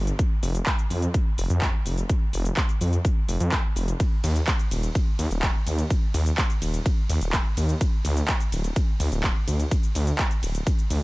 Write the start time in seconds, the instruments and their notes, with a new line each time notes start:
Already playing: detuned saw bass G1
0.07 closed hi-hat, cabasa
0.19 kick, closed hi-hat, cabasa
0.43 detuned saw bass F1, open hi-hat, cabasa
0.55 closed hi-hat, cabasa
0.66 kick, clap, closed hi-hat, cabasa
0.79 closed hi-hat, cabasa
0.90 detuned saw bass F2, open hi-hat, cabasa
1.02 closed hi-hat, cabasa
1.14 kick, closed hi-hat, cabasa
1.38 detuned saw bass F1, open hi-hat, cabasa
1.50 detuned saw bass F2, closed hi-hat, cabasa
1.62 kick, clap, closed hi-hat, cabasa
1.86 detuned saw bass F1, open hi-hat, cabasa
1.98 closed hi-hat, cabasa
2.09 kick, closed hi-hat, cabasa
2.33 detuned saw bass F1, open hi-hat, cabasa
2.45 closed hi-hat, cabasa
2.57 kick, clap, closed hi-hat, cabasa
2.69 closed hi-hat, cabasa
2.81 detuned saw bass F2, open hi-hat, cabasa
2.93 closed hi-hat, cabasa
3.05 kick, closed hi-hat, cabasa
3.29 detuned saw bass F1, open hi-hat, cabasa
3.40 detuned saw bass F2, closed hi-hat, cabasa
3.52 kick, clap, closed hi-hat, cabasa
3.76 detuned saw bass F1, open hi-hat, cabasa
3.88 closed hi-hat, cabasa
4.00 kick, closed hi-hat, ride, cabasa
4.24 detuned saw bass D#2, open hi-hat, ride, cabasa
4.36 closed hi-hat, cabasa
4.47 kick, clap, closed hi-hat, ride, cabasa
4.59 closed hi-hat, cabasa
4.71 detuned saw bass D#1, open hi-hat, ride, cabasa
4.83 closed hi-hat, cabasa
4.95 kick, closed hi-hat, ride, cabasa
5.19 detuned saw bass D#2, open hi-hat, ride, cabasa
5.31 detuned saw bass D#1, closed hi-hat, cabasa
5.43 kick, clap, closed hi-hat, ride, cabasa
5.67 detuned saw bass D#2, open hi-hat, ride, cabasa
5.79 closed hi-hat, cabasa
5.90 kick, closed hi-hat, ride, cabasa
6.14 detuned saw bass D#2, open hi-hat, ride, cabasa
6.26 closed hi-hat, cabasa
6.38 kick, clap, closed hi-hat, ride, cabasa
6.50 closed hi-hat, cabasa
6.62 detuned saw bass D#1, open hi-hat, ride, cabasa
6.74 closed hi-hat, cabasa
6.86 kick, closed hi-hat, ride, cabasa
7.09 detuned saw bass D#2, open hi-hat, ride, cabasa
7.21 detuned saw bass D#1, closed hi-hat, cabasa
7.33 kick, clap, closed hi-hat, ride, cabasa
7.57 detuned saw bass D#2, open hi-hat, ride, cabasa
7.69 closed hi-hat, cabasa
7.81 kick, closed hi-hat, ride, cabasa
8.05 detuned saw bass D2, open hi-hat, ride, cabasa
8.17 closed hi-hat, cabasa
8.28 kick, clap, closed hi-hat, ride, cabasa
8.40 closed hi-hat, cabasa
8.52 detuned saw bass D1, open hi-hat, ride, cabasa
8.64 closed hi-hat, cabasa
8.76 kick, closed hi-hat, ride, cabasa
9.00 detuned saw bass D2, open hi-hat, ride, cabasa
9.12 detuned saw bass D1, closed hi-hat, cabasa
9.24 kick, clap, closed hi-hat, ride, cabasa
9.48 detuned saw bass D2, open hi-hat, ride, cabasa
9.59 closed hi-hat, cabasa
9.71 kick, closed hi-hat, ride, cabasa
9.83 closed hi-hat, cabasa
9.95 detuned saw bass D2, open hi-hat, ride, cabasa
10.07 closed hi-hat, cabasa
10.19 kick, clap, closed hi-hat, ride, cabasa
10.31 closed hi-hat, cabasa
10.43 detuned saw bass D1, open hi-hat, ride, cabasa
10.55 closed hi-hat, cabasa
10.67 kick, closed hi-hat, ride, cabasa
10.79 closed hi-hat, cabasa
10.90 detuned saw bass D2, open hi-hat, ride, cabasa